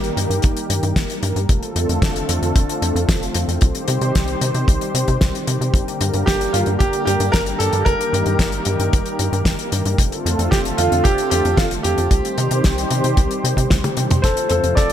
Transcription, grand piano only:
6.26 G4
6.53 F4
6.79 G4
7.05 G4
7.32 A#4
7.59 A4
7.85 A#4
10.51 G4
10.77 F4
11.04 G4
11.30 G4
11.57 F4
11.83 G4
14.22 A4 C5
14.49 A4 C5
14.75 A4 D5

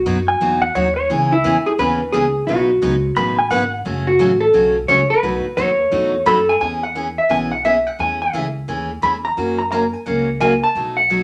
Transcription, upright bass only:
0.06 F#2
0.41 E2
0.75 D#2
1.10 C#2
1.44 E2
1.66 muted upright bass stroke
1.78 D#2
2.13 C#2
2.47 B1
2.82 C#2
3.16 A1
3.51 G#1
3.85 F#1
4.20 A1
4.54 B1
4.88 C#2
5.10 muted upright bass stroke
5.23 B1
5.45 muted upright bass stroke
5.57 D#2
5.91 E2
6.26 F#2
6.61 E2
7.30 B1
7.99 E2
8.33 C#2
8.68 D#2
9.02 E2
9.37 F#2
10.06 C#2
10.75 B1

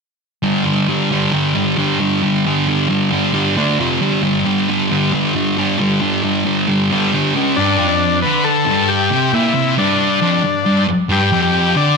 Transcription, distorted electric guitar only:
0.43 G2 D3 G3
0.64 G2 D3 G3
0.88 G2 D3 G3
1.11 G2 D3 G3
1.33 G2 D3 G3
1.55 G2 D3 G3
1.77 G2 D3 G3
2.00 G2 D3 G3
2.23 G2 D3 G3
2.45 G2 D3 G3
2.68 G2 D3 G3
2.88 G2 D3 G3
3.11 G2 D3 G3
3.32 G2 D3 G3
3.57 D3 A3 D4
3.79 F2 C3 F3
4.01 G2 D3 G3
4.22 G2 D3 G3
4.45 G2 D3 G3
4.69 G2 D3 G3
4.90 G2 D3 G3
5.12 G2 D3 G3
5.34 G2 D3 G3
5.57 G2 D3 G3
5.78 G2 D3 G3
6.01 G2 D3 G3
6.23 G2 D3 G3
6.45 G2 D3 G3
6.68 G2 D3 G3
6.91 G2 D3 G3
7.13 G2 D3 G3
7.34 C#3 G#3 C#4
7.56 G2
7.79 F2
8.23 D3
8.66 G2
9.10 C3
9.33 A#2
9.54 C3
9.77 G2
10.21 F2
10.44 G2
10.66 G2
10.88 muted distorted electric guitar stroke
11.09 G2
11.32 F2
11.75 D3

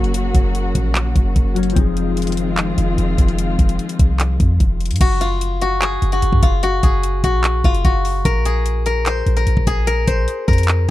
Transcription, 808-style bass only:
Already playing: F#1
0.35 F#1
0.75 A#1
1.16 F#1
1.36 F#1
1.76 F1
2.78 F1
2.98 F1
3.18 F1
3.59 F1
3.99 C2
4.40 F2
4.60 F1
4.91 G#2
5.01 F#1
6.02 F#1
6.22 F#1
6.33 F#2
6.43 F#1
6.83 F#1
7.24 A#1
7.64 F#1
7.85 F#1
8.25 A#1
9.26 A#1
9.47 A#1
9.57 A#1
9.67 A#1
10.08 A#1
10.48 F2

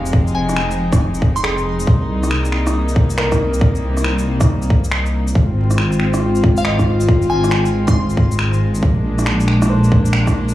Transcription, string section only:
Already playing: F3 G#3 C4 D#4
1.87 C3 G3 A#3
5.34 G#3 C4 F4
8.82 A#3 D4

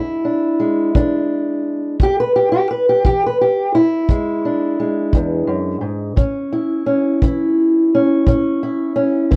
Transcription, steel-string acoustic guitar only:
Already playing: E2 G#3 D4 E4
0.25 D4
0.60 G#3
0.96 E3 D4
2.00 E2 G4
2.20 B4
2.36 G4
2.52 G4
2.71 B4
2.89 G4
3.05 E3 G4
3.26 B4
3.41 G4
3.75 E4
4.09 E2 G#3
4.45 D4
4.80 G#3
5.15 E2
5.47 F#2
5.81 G#2
6.16 A2 C#4
6.52 E4
6.86 C#4
7.22 E3 E4
7.95 C#4
8.26 A2 C#4
8.63 E4
8.96 C#4
9.31 E3 E4

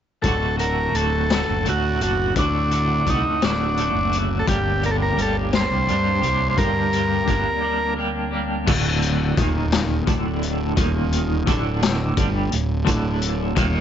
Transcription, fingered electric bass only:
0.24 D1
0.94 D1
1.48 F#1
1.66 D2
2.00 F#1
2.36 D2
3.07 C2
3.42 D1
3.95 F#1
4.47 G1
5.17 G1
5.71 C2
5.87 G2
6.22 C2
6.57 G2
7.28 G1
8.67 D1
9.38 D#1
10.07 D1
10.77 D#1
11.47 D1
12.17 G1
12.53 D1
12.87 D1
13.57 D#1

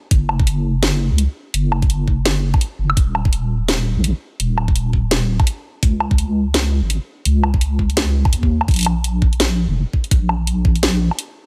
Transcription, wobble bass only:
0.11 F#1
1.11 C#2
1.54 F#1
2.79 F#1
2.97 D#1
3.97 A#1
4.40 D#1
5.83 C#2
6.83 G#1
7.26 C#2
8.32 D#2
8.68 A#1
9.68 F1
10.11 A#1

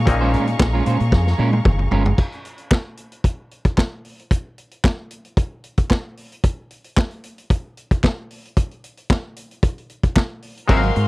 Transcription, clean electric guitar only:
0.07 muted clean electric guitar stroke
0.21 G#3 C#4 F4 C5
0.33 G#3 C#4 F4 A#4
0.48 muted clean electric guitar stroke
0.60 muted clean electric guitar stroke
0.73 G#3 C#4 F4 A#4
0.85 G#3 C#4 F4 C5
0.99 muted clean electric guitar stroke
1.26 muted clean electric guitar stroke
1.38 G#3 C#4 F4 A#4
1.52 muted clean electric guitar stroke
1.78 muted clean electric guitar stroke
1.91 G#3 C#4 F4 A#4
2.05 muted clean electric guitar stroke
10.69 F#3 C4 F4 A#4
10.83 muted clean electric guitar stroke
10.96 muted clean electric guitar stroke

